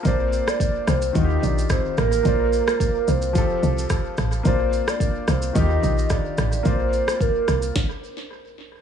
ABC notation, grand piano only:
X:1
M:4/4
L:1/8
Q:"Swing 16ths" 1/4=109
K:Bb
V:1 name="Grand piano"
[B,Fcd]4 [E,EF_G=G]4 | [B,Fcd]4 [F,FGA]4 | [B,Fcd]4 [E,EFG]4 | [B,Fcd]4 z4 |]